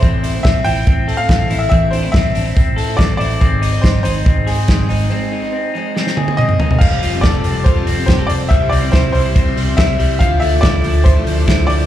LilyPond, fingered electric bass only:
\new Staff \with { instrumentName = "Fingered electric bass" } { \clef bass \time 4/4 \key f \lydian \tempo 4 = 141 a,,4 a,,8 a,,8 a,,8 a,8 a,,8 a,,8 | a,,4 a,,8 a,,8 a,,8 a,8 a,,8 a,,8 | aes,,4 aes,,8 aes,,8 aes,,8 aes,8 aes,,8 aes,,8 | r1 |
f,,8 f,,8 f,,8 f,,8. r16 f,,8 f,,8 f,,8 | c,8 c,8 c,8 c,8. r16 c,8 c,8 c,8 | d,8 d,8 d,8 d,8. r16 d,8 d,8 d,8 | }